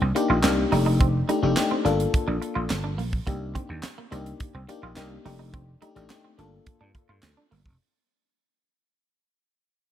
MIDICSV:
0, 0, Header, 1, 6, 480
1, 0, Start_track
1, 0, Tempo, 566038
1, 853, Time_signature, 4, 2, 24, 8
1, 8408, End_track
2, 0, Start_track
2, 0, Title_t, "FM electric piano"
2, 0, Program_c, 0, 5
2, 127, Note_on_c, 0, 58, 93
2, 130, Note_on_c, 0, 62, 91
2, 132, Note_on_c, 0, 63, 88
2, 135, Note_on_c, 0, 67, 109
2, 280, Note_off_c, 0, 58, 0
2, 281, Note_off_c, 0, 62, 0
2, 282, Note_off_c, 0, 63, 0
2, 284, Note_off_c, 0, 67, 0
2, 364, Note_on_c, 0, 58, 99
2, 366, Note_on_c, 0, 62, 90
2, 370, Note_on_c, 0, 63, 90
2, 370, Note_on_c, 0, 67, 105
2, 599, Note_off_c, 0, 62, 0
2, 603, Note_off_c, 0, 63, 0
2, 603, Note_off_c, 0, 67, 0
2, 606, Note_on_c, 0, 57, 88
2, 609, Note_off_c, 0, 58, 0
2, 609, Note_on_c, 0, 62, 82
2, 613, Note_on_c, 0, 63, 93
2, 613, Note_on_c, 0, 67, 100
2, 994, Note_off_c, 0, 57, 0
2, 995, Note_off_c, 0, 62, 0
2, 997, Note_off_c, 0, 63, 0
2, 997, Note_off_c, 0, 67, 0
2, 1090, Note_on_c, 0, 57, 89
2, 1091, Note_on_c, 0, 62, 80
2, 1095, Note_on_c, 0, 63, 83
2, 1097, Note_on_c, 0, 67, 93
2, 1166, Note_off_c, 0, 57, 0
2, 1167, Note_off_c, 0, 62, 0
2, 1169, Note_off_c, 0, 63, 0
2, 1170, Note_off_c, 0, 67, 0
2, 1207, Note_on_c, 0, 57, 100
2, 1210, Note_on_c, 0, 62, 88
2, 1212, Note_on_c, 0, 63, 92
2, 1214, Note_on_c, 0, 67, 109
2, 1285, Note_off_c, 0, 57, 0
2, 1286, Note_off_c, 0, 62, 0
2, 1287, Note_off_c, 0, 63, 0
2, 1288, Note_off_c, 0, 67, 0
2, 1326, Note_on_c, 0, 57, 97
2, 1327, Note_on_c, 0, 62, 96
2, 1329, Note_on_c, 0, 63, 87
2, 1333, Note_on_c, 0, 67, 111
2, 1557, Note_off_c, 0, 62, 0
2, 1565, Note_on_c, 0, 58, 104
2, 1567, Note_on_c, 0, 62, 96
2, 1570, Note_off_c, 0, 57, 0
2, 1570, Note_on_c, 0, 65, 95
2, 1571, Note_off_c, 0, 63, 0
2, 1572, Note_on_c, 0, 69, 109
2, 1573, Note_off_c, 0, 67, 0
2, 2337, Note_off_c, 0, 58, 0
2, 2338, Note_off_c, 0, 62, 0
2, 2340, Note_off_c, 0, 65, 0
2, 2341, Note_off_c, 0, 69, 0
2, 2769, Note_on_c, 0, 58, 82
2, 2771, Note_on_c, 0, 62, 83
2, 2774, Note_on_c, 0, 63, 72
2, 2776, Note_on_c, 0, 67, 101
2, 3219, Note_off_c, 0, 58, 0
2, 3220, Note_off_c, 0, 62, 0
2, 3221, Note_off_c, 0, 63, 0
2, 3222, Note_off_c, 0, 67, 0
2, 3485, Note_on_c, 0, 58, 93
2, 3488, Note_on_c, 0, 62, 93
2, 3491, Note_on_c, 0, 63, 84
2, 3493, Note_on_c, 0, 67, 101
2, 3788, Note_off_c, 0, 58, 0
2, 3789, Note_off_c, 0, 62, 0
2, 3790, Note_off_c, 0, 63, 0
2, 3791, Note_off_c, 0, 67, 0
2, 3971, Note_on_c, 0, 58, 101
2, 3973, Note_on_c, 0, 62, 89
2, 3975, Note_on_c, 0, 63, 85
2, 3978, Note_on_c, 0, 67, 108
2, 4122, Note_off_c, 0, 58, 0
2, 4122, Note_off_c, 0, 62, 0
2, 4123, Note_off_c, 0, 63, 0
2, 4125, Note_off_c, 0, 67, 0
2, 4208, Note_on_c, 0, 58, 110
2, 4210, Note_on_c, 0, 62, 94
2, 4212, Note_on_c, 0, 63, 94
2, 4215, Note_on_c, 0, 67, 109
2, 4444, Note_off_c, 0, 62, 0
2, 4445, Note_off_c, 0, 63, 0
2, 4447, Note_off_c, 0, 67, 0
2, 4450, Note_on_c, 0, 57, 91
2, 4451, Note_off_c, 0, 58, 0
2, 4454, Note_on_c, 0, 62, 84
2, 4455, Note_on_c, 0, 63, 91
2, 4458, Note_on_c, 0, 67, 107
2, 4836, Note_off_c, 0, 57, 0
2, 4838, Note_off_c, 0, 62, 0
2, 4838, Note_off_c, 0, 63, 0
2, 4840, Note_off_c, 0, 67, 0
2, 4928, Note_on_c, 0, 57, 88
2, 4931, Note_on_c, 0, 62, 80
2, 4933, Note_on_c, 0, 63, 77
2, 4935, Note_on_c, 0, 67, 97
2, 5005, Note_off_c, 0, 57, 0
2, 5007, Note_off_c, 0, 62, 0
2, 5008, Note_off_c, 0, 63, 0
2, 5009, Note_off_c, 0, 67, 0
2, 5049, Note_on_c, 0, 57, 98
2, 5051, Note_on_c, 0, 62, 98
2, 5053, Note_on_c, 0, 63, 91
2, 5055, Note_on_c, 0, 67, 107
2, 5126, Note_off_c, 0, 57, 0
2, 5127, Note_off_c, 0, 62, 0
2, 5128, Note_off_c, 0, 63, 0
2, 5129, Note_off_c, 0, 67, 0
2, 5172, Note_on_c, 0, 57, 99
2, 5173, Note_on_c, 0, 62, 87
2, 5175, Note_on_c, 0, 63, 85
2, 5177, Note_on_c, 0, 67, 105
2, 5399, Note_off_c, 0, 62, 0
2, 5409, Note_on_c, 0, 58, 103
2, 5410, Note_on_c, 0, 62, 83
2, 5413, Note_off_c, 0, 57, 0
2, 5414, Note_off_c, 0, 63, 0
2, 5414, Note_on_c, 0, 65, 93
2, 5415, Note_off_c, 0, 67, 0
2, 5415, Note_on_c, 0, 69, 104
2, 6179, Note_off_c, 0, 58, 0
2, 6180, Note_off_c, 0, 62, 0
2, 6182, Note_off_c, 0, 65, 0
2, 6182, Note_off_c, 0, 69, 0
2, 8408, End_track
3, 0, Start_track
3, 0, Title_t, "Clean electric guitar"
3, 0, Program_c, 1, 27
3, 16, Note_on_c, 1, 60, 73
3, 83, Note_off_c, 1, 60, 0
3, 254, Note_on_c, 1, 65, 70
3, 321, Note_off_c, 1, 65, 0
3, 612, Note_on_c, 1, 63, 89
3, 679, Note_off_c, 1, 63, 0
3, 732, Note_on_c, 1, 63, 80
3, 799, Note_off_c, 1, 63, 0
3, 853, Note_on_c, 1, 60, 82
3, 920, Note_off_c, 1, 60, 0
3, 1093, Note_on_c, 1, 63, 84
3, 1160, Note_off_c, 1, 63, 0
3, 1452, Note_on_c, 1, 60, 64
3, 1520, Note_off_c, 1, 60, 0
3, 1567, Note_on_c, 1, 62, 79
3, 1636, Note_off_c, 1, 62, 0
3, 1930, Note_on_c, 1, 62, 88
3, 1998, Note_off_c, 1, 62, 0
3, 2166, Note_on_c, 1, 65, 79
3, 2235, Note_off_c, 1, 65, 0
3, 2407, Note_on_c, 1, 62, 75
3, 2476, Note_off_c, 1, 62, 0
3, 2529, Note_on_c, 1, 58, 80
3, 2597, Note_off_c, 1, 58, 0
3, 2770, Note_on_c, 1, 58, 88
3, 2838, Note_off_c, 1, 58, 0
3, 3011, Note_on_c, 1, 60, 82
3, 3078, Note_off_c, 1, 60, 0
3, 3375, Note_on_c, 1, 58, 70
3, 3442, Note_off_c, 1, 58, 0
3, 3493, Note_on_c, 1, 60, 75
3, 3560, Note_off_c, 1, 60, 0
3, 3856, Note_on_c, 1, 60, 77
3, 3922, Note_off_c, 1, 60, 0
3, 4098, Note_on_c, 1, 65, 73
3, 4163, Note_off_c, 1, 65, 0
3, 4456, Note_on_c, 1, 63, 85
3, 4522, Note_off_c, 1, 63, 0
3, 4573, Note_on_c, 1, 63, 83
3, 4640, Note_off_c, 1, 63, 0
3, 4696, Note_on_c, 1, 60, 85
3, 4762, Note_off_c, 1, 60, 0
3, 4935, Note_on_c, 1, 63, 79
3, 5001, Note_off_c, 1, 63, 0
3, 5296, Note_on_c, 1, 60, 62
3, 5362, Note_off_c, 1, 60, 0
3, 5417, Note_on_c, 1, 62, 77
3, 5483, Note_off_c, 1, 62, 0
3, 5773, Note_on_c, 1, 62, 88
3, 5840, Note_off_c, 1, 62, 0
3, 6013, Note_on_c, 1, 65, 79
3, 6080, Note_off_c, 1, 65, 0
3, 6252, Note_on_c, 1, 62, 69
3, 6320, Note_off_c, 1, 62, 0
3, 6370, Note_on_c, 1, 58, 73
3, 6438, Note_off_c, 1, 58, 0
3, 8408, End_track
4, 0, Start_track
4, 0, Title_t, "Slap bass"
4, 0, Program_c, 2, 36
4, 12, Note_on_c, 2, 36, 92
4, 96, Note_off_c, 2, 36, 0
4, 252, Note_on_c, 2, 34, 92
4, 335, Note_off_c, 2, 34, 0
4, 374, Note_on_c, 2, 36, 106
4, 540, Note_off_c, 2, 36, 0
4, 611, Note_on_c, 2, 29, 107
4, 1028, Note_off_c, 2, 29, 0
4, 1210, Note_on_c, 2, 29, 99
4, 1295, Note_off_c, 2, 29, 0
4, 1569, Note_on_c, 2, 31, 90
4, 1737, Note_off_c, 2, 31, 0
4, 1930, Note_on_c, 2, 34, 93
4, 2014, Note_off_c, 2, 34, 0
4, 2171, Note_on_c, 2, 34, 96
4, 2255, Note_off_c, 2, 34, 0
4, 2294, Note_on_c, 2, 31, 100
4, 2535, Note_off_c, 2, 31, 0
4, 2535, Note_on_c, 2, 34, 100
4, 2700, Note_off_c, 2, 34, 0
4, 2776, Note_on_c, 2, 36, 100
4, 3024, Note_off_c, 2, 36, 0
4, 3134, Note_on_c, 2, 39, 90
4, 3217, Note_off_c, 2, 39, 0
4, 3493, Note_on_c, 2, 36, 95
4, 3660, Note_off_c, 2, 36, 0
4, 3854, Note_on_c, 2, 36, 92
4, 3937, Note_off_c, 2, 36, 0
4, 4095, Note_on_c, 2, 34, 94
4, 4177, Note_off_c, 2, 34, 0
4, 4213, Note_on_c, 2, 36, 103
4, 4380, Note_off_c, 2, 36, 0
4, 4456, Note_on_c, 2, 29, 118
4, 4870, Note_off_c, 2, 29, 0
4, 5054, Note_on_c, 2, 33, 89
4, 5137, Note_off_c, 2, 33, 0
4, 5413, Note_on_c, 2, 31, 92
4, 5580, Note_off_c, 2, 31, 0
4, 5775, Note_on_c, 2, 43, 94
4, 5858, Note_off_c, 2, 43, 0
4, 6014, Note_on_c, 2, 43, 87
4, 6097, Note_off_c, 2, 43, 0
4, 6131, Note_on_c, 2, 38, 100
4, 6215, Note_off_c, 2, 38, 0
4, 6374, Note_on_c, 2, 31, 103
4, 6457, Note_off_c, 2, 31, 0
4, 6491, Note_on_c, 2, 29, 101
4, 6575, Note_off_c, 2, 29, 0
4, 8408, End_track
5, 0, Start_track
5, 0, Title_t, "Muted clean electric guitar strokes"
5, 136, Note_on_c, 9, 29, 48
5, 221, Note_off_c, 9, 29, 0
5, 372, Note_on_c, 9, 29, 46
5, 457, Note_off_c, 9, 29, 0
5, 1211, Note_on_c, 9, 29, 46
5, 1296, Note_off_c, 9, 29, 0
5, 1333, Note_on_c, 9, 29, 50
5, 1418, Note_off_c, 9, 29, 0
5, 2049, Note_on_c, 9, 29, 45
5, 2134, Note_off_c, 9, 29, 0
5, 2285, Note_on_c, 9, 29, 46
5, 2370, Note_off_c, 9, 29, 0
5, 3131, Note_on_c, 9, 29, 45
5, 3216, Note_off_c, 9, 29, 0
5, 3250, Note_on_c, 9, 29, 48
5, 3335, Note_off_c, 9, 29, 0
5, 3978, Note_on_c, 9, 29, 43
5, 4062, Note_off_c, 9, 29, 0
5, 4220, Note_on_c, 9, 29, 45
5, 4305, Note_off_c, 9, 29, 0
5, 5059, Note_on_c, 9, 29, 45
5, 5144, Note_off_c, 9, 29, 0
5, 5176, Note_on_c, 9, 29, 45
5, 5261, Note_off_c, 9, 29, 0
5, 5894, Note_on_c, 9, 29, 47
5, 5979, Note_off_c, 9, 29, 0
5, 6133, Note_on_c, 9, 29, 45
5, 6218, Note_off_c, 9, 29, 0
5, 8408, End_track
6, 0, Start_track
6, 0, Title_t, "Drums"
6, 135, Note_on_c, 9, 42, 82
6, 220, Note_off_c, 9, 42, 0
6, 367, Note_on_c, 9, 39, 87
6, 371, Note_on_c, 9, 42, 98
6, 372, Note_on_c, 9, 38, 117
6, 373, Note_on_c, 9, 63, 82
6, 451, Note_off_c, 9, 39, 0
6, 456, Note_off_c, 9, 38, 0
6, 456, Note_off_c, 9, 42, 0
6, 457, Note_off_c, 9, 63, 0
6, 612, Note_on_c, 9, 63, 77
6, 614, Note_on_c, 9, 46, 90
6, 697, Note_off_c, 9, 63, 0
6, 699, Note_off_c, 9, 46, 0
6, 852, Note_on_c, 9, 42, 91
6, 853, Note_on_c, 9, 36, 119
6, 857, Note_on_c, 9, 62, 50
6, 937, Note_off_c, 9, 42, 0
6, 938, Note_off_c, 9, 36, 0
6, 941, Note_off_c, 9, 62, 0
6, 1095, Note_on_c, 9, 42, 63
6, 1095, Note_on_c, 9, 62, 50
6, 1179, Note_off_c, 9, 62, 0
6, 1180, Note_off_c, 9, 42, 0
6, 1328, Note_on_c, 9, 39, 87
6, 1332, Note_on_c, 9, 63, 92
6, 1333, Note_on_c, 9, 38, 116
6, 1337, Note_on_c, 9, 42, 103
6, 1413, Note_off_c, 9, 39, 0
6, 1417, Note_off_c, 9, 63, 0
6, 1418, Note_off_c, 9, 38, 0
6, 1422, Note_off_c, 9, 42, 0
6, 1575, Note_on_c, 9, 42, 80
6, 1660, Note_off_c, 9, 42, 0
6, 1696, Note_on_c, 9, 42, 61
6, 1781, Note_off_c, 9, 42, 0
6, 1813, Note_on_c, 9, 62, 52
6, 1814, Note_on_c, 9, 42, 96
6, 1815, Note_on_c, 9, 36, 127
6, 1898, Note_off_c, 9, 42, 0
6, 1898, Note_off_c, 9, 62, 0
6, 1900, Note_off_c, 9, 36, 0
6, 2055, Note_on_c, 9, 42, 77
6, 2140, Note_off_c, 9, 42, 0
6, 2287, Note_on_c, 9, 39, 87
6, 2292, Note_on_c, 9, 38, 115
6, 2292, Note_on_c, 9, 42, 96
6, 2297, Note_on_c, 9, 63, 89
6, 2372, Note_off_c, 9, 39, 0
6, 2377, Note_off_c, 9, 38, 0
6, 2377, Note_off_c, 9, 42, 0
6, 2381, Note_off_c, 9, 63, 0
6, 2536, Note_on_c, 9, 46, 88
6, 2537, Note_on_c, 9, 63, 68
6, 2621, Note_off_c, 9, 46, 0
6, 2621, Note_off_c, 9, 63, 0
6, 2654, Note_on_c, 9, 36, 103
6, 2738, Note_off_c, 9, 36, 0
6, 2774, Note_on_c, 9, 42, 93
6, 2775, Note_on_c, 9, 36, 116
6, 2781, Note_on_c, 9, 62, 51
6, 2859, Note_off_c, 9, 36, 0
6, 2859, Note_off_c, 9, 42, 0
6, 2866, Note_off_c, 9, 62, 0
6, 3014, Note_on_c, 9, 36, 91
6, 3017, Note_on_c, 9, 42, 61
6, 3017, Note_on_c, 9, 62, 55
6, 3098, Note_off_c, 9, 36, 0
6, 3102, Note_off_c, 9, 42, 0
6, 3102, Note_off_c, 9, 62, 0
6, 3246, Note_on_c, 9, 39, 95
6, 3251, Note_on_c, 9, 38, 116
6, 3254, Note_on_c, 9, 63, 88
6, 3255, Note_on_c, 9, 42, 99
6, 3331, Note_off_c, 9, 39, 0
6, 3336, Note_off_c, 9, 38, 0
6, 3339, Note_off_c, 9, 63, 0
6, 3340, Note_off_c, 9, 42, 0
6, 3496, Note_on_c, 9, 42, 73
6, 3581, Note_off_c, 9, 42, 0
6, 3614, Note_on_c, 9, 42, 57
6, 3699, Note_off_c, 9, 42, 0
6, 3732, Note_on_c, 9, 42, 106
6, 3734, Note_on_c, 9, 62, 54
6, 3735, Note_on_c, 9, 36, 127
6, 3817, Note_off_c, 9, 42, 0
6, 3819, Note_off_c, 9, 62, 0
6, 3820, Note_off_c, 9, 36, 0
6, 3975, Note_on_c, 9, 42, 83
6, 3979, Note_on_c, 9, 62, 40
6, 4060, Note_off_c, 9, 42, 0
6, 4064, Note_off_c, 9, 62, 0
6, 4207, Note_on_c, 9, 39, 88
6, 4212, Note_on_c, 9, 38, 121
6, 4212, Note_on_c, 9, 42, 101
6, 4219, Note_on_c, 9, 63, 80
6, 4292, Note_off_c, 9, 39, 0
6, 4297, Note_off_c, 9, 38, 0
6, 4297, Note_off_c, 9, 42, 0
6, 4304, Note_off_c, 9, 63, 0
6, 4457, Note_on_c, 9, 46, 84
6, 4459, Note_on_c, 9, 63, 72
6, 4542, Note_off_c, 9, 46, 0
6, 4544, Note_off_c, 9, 63, 0
6, 4695, Note_on_c, 9, 36, 120
6, 4697, Note_on_c, 9, 42, 93
6, 4703, Note_on_c, 9, 62, 52
6, 4780, Note_off_c, 9, 36, 0
6, 4782, Note_off_c, 9, 42, 0
6, 4787, Note_off_c, 9, 62, 0
6, 4937, Note_on_c, 9, 42, 59
6, 4937, Note_on_c, 9, 62, 57
6, 5021, Note_off_c, 9, 42, 0
6, 5022, Note_off_c, 9, 62, 0
6, 5056, Note_on_c, 9, 42, 47
6, 5140, Note_off_c, 9, 42, 0
6, 5169, Note_on_c, 9, 39, 95
6, 5175, Note_on_c, 9, 38, 114
6, 5175, Note_on_c, 9, 63, 85
6, 5179, Note_on_c, 9, 42, 98
6, 5254, Note_off_c, 9, 39, 0
6, 5259, Note_off_c, 9, 38, 0
6, 5260, Note_off_c, 9, 63, 0
6, 5263, Note_off_c, 9, 42, 0
6, 5416, Note_on_c, 9, 42, 73
6, 5501, Note_off_c, 9, 42, 0
6, 5652, Note_on_c, 9, 42, 101
6, 5652, Note_on_c, 9, 62, 57
6, 5652, Note_on_c, 9, 64, 77
6, 5654, Note_on_c, 9, 36, 125
6, 5736, Note_off_c, 9, 42, 0
6, 5737, Note_off_c, 9, 62, 0
6, 5737, Note_off_c, 9, 64, 0
6, 5739, Note_off_c, 9, 36, 0
6, 5891, Note_on_c, 9, 36, 95
6, 5893, Note_on_c, 9, 42, 76
6, 5976, Note_off_c, 9, 36, 0
6, 5978, Note_off_c, 9, 42, 0
6, 6127, Note_on_c, 9, 39, 87
6, 6131, Note_on_c, 9, 42, 108
6, 6132, Note_on_c, 9, 38, 111
6, 6136, Note_on_c, 9, 63, 87
6, 6211, Note_off_c, 9, 39, 0
6, 6216, Note_off_c, 9, 38, 0
6, 6216, Note_off_c, 9, 42, 0
6, 6220, Note_off_c, 9, 63, 0
6, 6375, Note_on_c, 9, 46, 85
6, 6376, Note_on_c, 9, 63, 68
6, 6460, Note_off_c, 9, 46, 0
6, 6461, Note_off_c, 9, 63, 0
6, 6492, Note_on_c, 9, 36, 92
6, 6577, Note_off_c, 9, 36, 0
6, 8408, End_track
0, 0, End_of_file